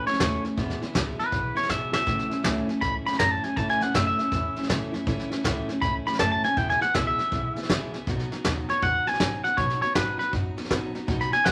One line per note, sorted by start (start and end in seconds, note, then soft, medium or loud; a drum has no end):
0.07 0.20 A3 soft
0.07 0.20 C#4 medium
0.07 0.20 E4 medium
0.07 0.43 C#5 loud
0.07 muted upright bass stroke medium
0.07 snare soft
0.13 snare soft
0.20 0.36 D#2 medium
0.20 0.44 A2 medium
0.20 0.44 E3 medium
0.20 0.45 A3 medium
0.20 0.44 C#4 medium
0.20 0.42 E4 medium
0.20 kick medium
0.20 snare loud
0.20 hi-hat pedal medium
0.44 0.57 A3 soft
0.44 0.58 C#4 soft
0.44 0.57 E4 soft
0.44 muted upright bass stroke medium
0.44 snare soft
0.56 0.73 E1 medium
0.56 0.81 E2 medium
0.56 0.81 B2 loud
0.56 0.82 E3 medium
0.56 0.82 G#3 loud
0.56 0.81 B3 loud
0.56 0.80 E4 loud
0.56 kick loud
0.56 snare soft
0.70 snare soft
0.81 0.93 E3 medium
0.81 0.94 G#3 medium
0.81 0.94 B3 medium
0.81 0.95 E4 medium
0.81 muted upright bass stroke medium
0.81 snare soft
0.94 1.11 C#2 loud
0.94 1.18 E2 medium
0.94 1.19 B2 medium
0.94 1.19 E3 loud
0.94 1.19 G#3 loud
0.94 1.18 B3 loud
0.94 1.17 E4 loud
0.94 kick medium
0.94 snare loud
0.94 hi-hat pedal medium
1.18 1.29 E3 soft
1.18 1.31 G#3 medium
1.18 1.32 B3 medium
1.18 1.32 E4 medium
1.18 1.56 B4 medium
1.18 muted upright bass stroke medium
1.18 snare soft
1.31 1.48 B1 medium
1.31 1.56 E3 medium
1.31 1.56 G#3 medium
1.31 1.55 B3 medium
1.31 1.54 E4 medium
1.31 kick loud
1.31 snare soft
1.55 1.69 E3 soft
1.55 1.69 G#3 soft
1.55 1.70 B3 medium
1.55 1.69 E4 medium
1.55 1.70 C#5 medium
1.55 muted upright bass stroke medium
1.55 snare soft
1.63 snare soft
1.69 1.85 C#2 medium
1.69 1.94 E2 medium
1.69 1.94 B2 medium
1.69 1.94 E3 medium
1.69 1.93 G#3 medium
1.69 1.92 B3 medium
1.69 1.90 E4 medium
1.69 1.92 E5 medium
1.69 kick medium
1.69 snare medium
1.69 hi-hat pedal medium
1.92 2.03 C#2 medium
1.92 2.05 E3 soft
1.92 2.07 G#3 soft
1.92 2.07 B3 medium
1.92 2.06 E4 medium
1.92 2.66 E5 loud
1.92 snare medium
2.06 2.23 A1 medium
2.06 2.31 A2 medium
2.06 2.31 E3 medium
2.06 2.31 A3 medium
2.06 2.30 C#4 medium
2.06 2.28 E4 medium
2.06 kick loud
2.06 snare soft
2.19 snare soft
2.29 2.43 A3 soft
2.29 2.44 C#4 medium
2.29 2.43 E4 medium
2.29 muted upright bass stroke medium
2.29 snare soft
2.43 2.60 C#2 loud
2.43 2.68 A2 loud
2.43 2.68 E3 medium
2.43 2.69 A3 loud
2.43 2.68 C#4 loud
2.43 2.66 E4 loud
2.43 kick medium
2.43 snare loud
2.43 hi-hat pedal medium
2.67 2.81 A3 medium
2.67 2.82 C#4 medium
2.67 2.81 E4 medium
2.67 muted upright bass stroke medium
2.67 snare soft
2.81 2.98 C#2 medium
2.81 3.06 E3 medium
2.81 3.06 A3 medium
2.81 3.06 C#4 medium
2.81 3.04 E4 medium
2.81 2.94 B5 loud
2.81 kick loud
2.81 snare soft
3.06 3.19 A3 soft
3.06 3.20 C#4 soft
3.06 3.19 E4 medium
3.06 3.19 B5 medium
3.06 muted upright bass stroke medium
3.06 snare soft
3.13 snare soft
3.19 3.35 F#2 medium
3.19 3.43 A2 medium
3.19 3.44 E3 medium
3.19 3.44 A3 medium
3.19 3.44 C#4 medium
3.19 3.43 E4 loud
3.19 3.31 A#5 medium
3.19 kick medium
3.19 snare loud
3.19 hi-hat pedal medium
3.31 3.44 A5 medium
3.44 3.56 A3 soft
3.44 3.57 C#4 medium
3.44 3.57 E4 medium
3.44 3.56 G#5 medium
3.44 muted upright bass stroke medium
3.44 snare soft
3.56 3.81 A2 medium
3.56 3.73 A2 medium
3.56 3.81 E3 medium
3.56 3.81 A3 loud
3.56 3.81 C#4 medium
3.56 3.79 E4 medium
3.56 3.69 A5 loud
3.56 kick loud
3.56 snare soft
3.69 3.82 G#5 medium
3.69 snare soft
3.81 3.94 A3 soft
3.81 3.95 C#4 medium
3.81 3.94 E4 medium
3.81 3.94 F#5 loud
3.81 muted upright bass stroke medium
3.81 snare soft
3.94 4.10 F#2 loud
3.94 4.19 A2 medium
3.94 4.19 E3 medium
3.94 4.19 A3 medium
3.94 4.19 C#4 loud
3.94 4.17 E4 medium
3.94 4.06 E5 medium
3.94 kick medium
3.94 snare loud
3.94 hi-hat pedal medium
4.07 4.80 E5 loud
4.19 4.32 A3 soft
4.19 4.33 C#4 medium
4.19 4.32 E4 medium
4.19 muted upright bass stroke medium
4.19 snare soft
4.32 4.48 E2 medium
4.32 4.56 E3 medium
4.32 4.57 A3 medium
4.32 4.57 C#4 medium
4.32 4.55 E4 medium
4.32 kick loud
4.32 snare soft
4.56 4.68 A3 soft
4.56 4.69 C#4 medium
4.56 4.69 E4 medium
4.56 muted upright bass stroke medium
4.56 snare soft
4.63 snare soft
4.69 4.85 F#2 loud
4.69 4.93 A2 medium
4.69 4.93 E3 loud
4.69 4.94 A3 loud
4.69 4.93 C#4 loud
4.69 4.91 E4 loud
4.69 kick medium
4.69 snare loud
4.69 hi-hat pedal medium
4.92 5.03 F#2 medium
4.92 5.06 A3 medium
4.92 5.07 C#4 medium
4.92 5.06 E4 medium
4.92 snare soft
5.06 5.23 A1 medium
5.06 5.31 A2 medium
5.06 5.31 E3 medium
5.06 5.31 A3 medium
5.06 5.31 C#4 medium
5.06 5.29 E4 loud
5.06 kick loud
5.06 snare soft
5.19 snare soft
5.30 5.43 A3 medium
5.30 5.44 C#4 medium
5.30 5.44 E4 medium
5.30 muted upright bass stroke medium
5.30 snare soft
5.43 5.60 C#2 loud
5.43 5.68 A2 loud
5.43 5.68 E3 loud
5.43 5.69 A3 loud
5.43 5.69 C#4 medium
5.43 5.67 E4 loud
5.43 kick medium
5.43 snare loud
5.43 hi-hat pedal medium
5.68 5.81 A3 medium
5.68 5.82 C#4 medium
5.68 5.82 E4 medium
5.68 muted upright bass stroke medium
5.68 snare soft
5.81 5.98 C#2 medium
5.81 6.06 E3 medium
5.81 6.06 A3 medium
5.81 6.06 C#4 medium
5.81 6.04 E4 medium
5.81 5.94 B5 loud
5.81 kick loud
5.81 snare soft
6.06 6.20 A3 soft
6.06 6.20 C#4 soft
6.06 6.19 E4 medium
6.06 6.19 B5 medium
6.06 muted upright bass stroke medium
6.06 snare soft
6.13 snare soft
6.19 6.35 F#2 medium
6.19 6.44 A2 medium
6.19 6.44 E3 medium
6.19 6.45 A3 medium
6.19 6.45 C#4 medium
6.19 6.43 E4 medium
6.19 6.31 A5 loud
6.19 kick medium
6.19 snare loud
6.19 hi-hat pedal loud
6.32 6.44 A5 loud
6.44 6.57 A3 soft
6.44 6.58 C#4 soft
6.44 6.57 E4 medium
6.44 6.58 G#5 medium
6.44 muted upright bass stroke medium
6.44 snare soft
6.56 6.73 E1 medium
6.56 6.81 E2 medium
6.56 6.81 B2 medium
6.56 6.81 E3 medium
6.56 6.82 G#3 medium
6.56 6.81 B3 medium
6.56 6.80 E4 loud
6.56 6.69 G5 loud
6.56 kick loud
6.56 snare soft
6.69 6.82 G#5 medium
6.69 snare soft
6.81 6.94 E3 soft
6.81 6.94 G#3 soft
6.81 6.95 B3 medium
6.81 6.95 E4 medium
6.81 6.94 F#5 medium
6.81 muted upright bass stroke medium
6.81 snare soft
6.94 7.10 C#2 loud
6.94 7.19 E2 medium
6.94 7.19 B2 medium
6.94 7.19 E3 medium
6.94 7.19 G#3 medium
6.94 7.18 B3 loud
6.94 7.16 E4 medium
6.94 7.06 E5 medium
6.94 kick medium
6.94 snare loud
6.94 hi-hat pedal medium
7.07 7.80 E5 medium
7.18 7.29 E3 soft
7.18 7.31 G#3 medium
7.18 7.32 B3 soft
7.18 7.32 E4 medium
7.18 muted upright bass stroke medium
7.18 snare soft
7.31 7.48 B1 medium
7.31 7.56 E3 medium
7.31 7.56 G#3 medium
7.31 7.55 B3 medium
7.31 7.54 E4 medium
7.31 kick loud
7.31 snare soft
7.55 7.69 E3 soft
7.55 7.69 G#3 medium
7.55 7.69 B3 medium
7.55 7.69 E4 medium
7.55 muted upright bass stroke medium
7.55 snare soft
7.63 snare soft
7.69 7.85 C#2 medium
7.69 7.94 E2 medium
7.69 7.94 B2 loud
7.69 7.94 E3 medium
7.69 7.94 G#3 loud
7.69 7.94 B3 loud
7.69 7.92 E4 loud
7.69 kick medium
7.69 snare loud
7.69 hi-hat pedal medium
7.93 8.03 C#2 medium
7.93 8.07 E3 soft
7.93 8.08 G#3 soft
7.93 8.07 B3 medium
7.93 8.07 E4 medium
7.93 snare soft
8.07 8.23 B1 medium
8.07 8.31 B2 medium
8.07 8.32 F#3 loud
8.07 8.32 B3 medium
8.07 8.31 D#4 loud
8.07 8.30 F#4 medium
8.07 kick loud
8.07 snare soft
8.19 snare soft
8.31 8.44 B3 soft
8.31 8.44 D#4 medium
8.31 8.45 F#4 medium
8.31 muted upright bass stroke medium
8.31 snare soft
8.44 8.61 D#2 loud
8.44 8.69 B2 medium
8.44 8.69 F#3 medium
8.44 8.69 B3 loud
8.44 8.68 D#4 medium
8.44 8.67 F#4 loud
8.44 kick medium
8.44 snare loud
8.44 hi-hat pedal medium
8.68 8.81 B3 soft
8.68 8.83 D#4 medium
8.68 8.82 F#4 medium
8.68 8.82 C#5 medium
8.68 muted upright bass stroke medium
8.68 snare soft
8.81 8.98 E2 medium
8.81 9.06 F#3 medium
8.81 9.07 B3 medium
8.81 9.06 D#4 medium
8.81 9.04 F#4 medium
8.81 9.07 F#5 loud
8.81 kick loud
8.81 snare soft
9.06 9.20 B3 soft
9.06 9.20 D#4 soft
9.06 9.19 F#4 medium
9.06 9.44 G#5 medium
9.06 muted upright bass stroke medium
9.06 snare soft
9.14 snare soft
9.20 9.36 G#2 medium
9.20 9.44 B2 medium
9.20 9.44 F#3 medium
9.20 9.45 B3 medium
9.20 9.44 D#4 medium
9.20 9.43 F#4 loud
9.20 kick medium
9.20 snare loud
9.20 hi-hat pedal medium
9.44 9.57 B3 soft
9.44 9.58 D#4 soft
9.44 9.57 F#4 medium
9.44 9.57 F#5 medium
9.44 muted upright bass stroke medium
9.44 snare soft
9.57 9.82 B2 medium
9.57 9.73 B2 medium
9.57 9.82 F#3 medium
9.57 9.82 B3 medium
9.57 9.82 D#4 medium
9.57 9.80 F#4 medium
9.57 9.81 C#5 loud
9.57 kick loud
9.57 snare soft
9.70 snare soft
9.81 9.94 B3 soft
9.81 9.95 D#4 medium
9.81 9.95 F#4 medium
9.81 9.95 C#5 loud
9.81 muted upright bass stroke medium
9.81 snare soft
9.95 10.11 G#2 loud
9.95 10.19 B2 medium
9.95 10.19 F#3 medium
9.95 10.20 B3 medium
9.95 10.18 D#4 loud
9.95 10.17 F#4 medium
9.95 10.18 B4 medium
9.95 kick medium
9.95 snare loud
9.95 hi-hat pedal medium
10.18 10.31 B3 soft
10.18 10.32 D#4 medium
10.18 10.32 F#4 medium
10.18 10.32 B4 loud
10.18 muted upright bass stroke medium
10.18 snare soft
10.31 10.49 F#2 loud
10.31 10.56 F#3 medium
10.31 10.57 B3 medium
10.31 10.57 D#4 medium
10.31 10.55 F#4 medium
10.31 kick loud
10.31 snare soft
10.57 10.70 B3 soft
10.57 10.70 D#4 medium
10.57 10.70 F#4 medium
10.57 muted upright bass stroke medium
10.57 snare soft
10.64 snare soft
10.69 10.86 G#2 medium
10.69 10.94 B2 medium
10.69 10.94 F#3 medium
10.69 10.95 B3 loud
10.69 10.95 D#4 loud
10.69 10.93 F#4 loud
10.69 kick loud
10.69 snare loud
10.69 hi-hat pedal medium
10.94 11.04 A2 medium
10.94 11.07 B3 soft
10.94 11.08 D#4 medium
10.94 11.08 F#4 medium
10.94 snare soft
11.07 11.24 B1 loud
11.07 11.32 B2 medium
11.07 11.32 F#3 medium
11.07 11.33 B3 loud
11.07 11.32 D#4 loud
11.07 11.30 F#4 loud
11.07 kick loud
11.07 snare soft
11.20 11.33 B5 medium
11.20 snare soft
11.31 11.45 B3 soft
11.31 11.45 D#4 medium
11.31 11.45 F#4 medium
11.31 11.45 G#5 loud
11.31 muted upright bass stroke medium
11.31 snare soft
11.45 11.52 D#2 loud
11.45 11.52 B2 medium
11.45 11.52 F#3 medium
11.45 11.52 B3 loud
11.45 11.52 D#4 medium
11.45 11.52 F#4 medium
11.45 11.52 F#5 loud
11.45 kick medium
11.45 snare loud
11.45 hi-hat pedal medium